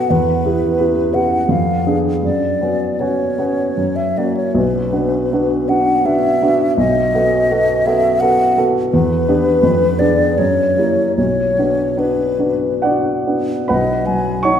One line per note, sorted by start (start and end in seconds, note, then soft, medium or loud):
0.00 0.12 B3 soft
0.00 0.12 F#4 soft
0.00 0.12 A4 soft
0.00 0.12 F#5 medium
0.10 0.44 E2 soft
0.10 1.15 B4 medium
0.45 0.76 B3 soft
0.45 0.76 E4 soft
0.45 0.76 G4 soft
0.79 1.10 B3 soft
0.79 1.11 E4 soft
0.79 1.11 G4 soft
1.14 1.46 B3 soft
1.14 1.46 E4 soft
1.14 1.47 G4 soft
1.14 1.52 F#5 medium
1.49 1.85 F2 soft
1.49 1.98 F5 soft
1.86 2.20 B3 soft
1.86 2.20 D4 soft
1.86 2.20 G#4 soft
2.23 2.60 F#2 soft
2.23 3.02 D5 soft
2.61 2.96 B3 soft
2.61 2.96 C#4 soft
2.61 2.96 F#4 soft
3.00 3.34 B3 soft
3.00 3.35 C#4 soft
3.00 3.35 F#4 soft
3.00 3.97 C#5 soft
3.38 3.73 B3 soft
3.38 3.74 C#4 soft
3.38 3.74 F#4 soft
3.77 4.15 F#2 soft
3.96 4.19 E5 soft
4.17 4.52 A#3 soft
4.17 4.52 C#4 soft
4.17 4.52 F#4 soft
4.17 4.36 D5 soft
4.37 4.56 C#5 soft
4.55 4.92 B1 soft
4.55 5.70 B4 medium
4.93 5.27 B3 soft
4.93 5.27 D4 soft
4.93 5.28 F#4 soft
5.33 5.66 B3 soft
5.33 5.66 D4 soft
5.33 5.66 F#4 soft
5.69 6.02 B3 soft
5.69 6.02 D4 soft
5.69 6.02 F#4 soft
5.69 6.07 F#5 medium
6.05 6.38 B3 soft
6.05 6.38 D4 soft
6.05 6.38 F#4 soft
6.05 6.77 E5 medium
6.42 6.74 B3 soft
6.42 6.75 D4 soft
6.42 6.75 F#4 soft
6.77 7.13 B1 soft
6.77 7.87 D#5 medium
7.14 7.46 B3 soft
7.14 7.47 F#4 soft
7.14 7.47 A4 soft
7.51 7.83 B3 soft
7.51 7.83 F#4 soft
7.51 7.83 A4 soft
7.86 8.18 B3 soft
7.86 8.18 F#4 soft
7.86 8.19 A4 soft
7.86 8.22 E5 medium
8.20 8.53 B3 soft
8.20 8.54 F#4 soft
8.20 8.53 A4 soft
8.20 8.67 F#5 medium
8.58 8.89 B3 soft
8.58 8.89 F#4 soft
8.58 8.89 A4 soft
8.92 9.26 E2 soft
8.92 10.01 B4 medium
9.29 9.60 B3 soft
9.29 9.60 D4 soft
9.29 9.60 G4 soft
9.63 9.99 F2 soft
9.99 10.34 B3 soft
9.99 10.35 D4 soft
9.99 10.35 G#4 soft
9.99 10.39 D5 medium
10.38 10.76 F#2 soft
10.38 11.16 C#5 medium
10.77 11.13 A#3 soft
10.77 11.13 E4 soft
10.77 11.14 G4 soft
11.17 11.56 B1 soft
11.17 12.00 C#5 medium
11.58 11.94 B3 soft
11.58 11.94 D4 soft
11.58 11.95 F#4 soft
11.97 12.36 B3 soft
11.97 12.36 D4 soft
11.97 12.36 F#4 soft
11.97 12.84 B4 soft
12.39 12.79 B3 soft
12.39 12.79 D4 soft
12.39 12.80 F#4 soft
12.82 13.23 B3 soft
12.82 13.23 D4 soft
12.82 13.23 F#4 soft
12.82 13.64 D5 soft
12.82 13.68 F#5 medium
13.27 13.65 B3 soft
13.27 13.65 D4 soft
13.27 13.65 F#4 soft
13.68 14.60 B1 soft
13.68 14.40 B4 soft
13.68 14.07 D#5 soft
13.68 14.41 F#5 soft
13.68 14.44 B5 medium
14.06 14.60 F#3 soft
14.06 14.46 G#5 soft
14.43 14.60 D#4 soft
14.43 14.60 C#5 medium
14.43 14.60 F#5 soft
14.43 14.60 C#6 medium